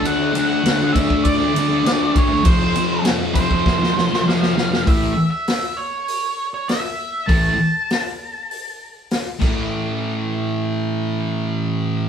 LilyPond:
<<
  \new Staff \with { instrumentName = "Lead electric guitar" } { \time 4/4 \key d \major \tempo 4 = 99 fis''8. fis''8. e''8 d''4. cis''8 | c''4 r8 c''4. f''4 | e''8. e''8. cis''4~ cis''16 cis''16 e''4 | a''2. r4 |
r1 | }
  \new Staff \with { instrumentName = "Distorted electric guitar" } { \clef bass \time 4/4 \key d \major <d a d'>8 <d a d'>8 <d a d'>16 <a d'>16 <d a d'>16 <a d'>8 <a d'>16 <d a d'>16 <a d'>16 <d a d'>8 <d a d'>16 <a d'>16 | <f, c f>8 <f, c f>8 <f, c f>16 <c f>16 <f, c f>16 <c f>8 <c f>16 <f, c f>16 <c f>16 <f, c f>8 <f, c f>16 <c f>16 | <a, e a>8 r2. r8 | <a, e a>8 r2. <a, e a>8~ |
<a, e a>1 | }
  \new DrumStaff \with { instrumentName = "Drums" } \drummode { \time 4/4 cymr8 cymr8 <cymr sn>8 <bd cymr>16 bd16 <bd cymr>8 cymr8 <cymr sn>8 <bd cymr>8 | <bd cymr>8 cymr8 <cymr sn>8 <bd cymr>16 bd16 <bd sn>16 sn16 sn16 sn16 sn16 sn16 sn16 sn16 | <hho bd>4 <hho sn>4 hho4 <hho sn>4 | <hho bd>4 <hho sn>4 hho4 <hho sn>8 <cymc bd>8 |
r4 r4 r4 r4 | }
>>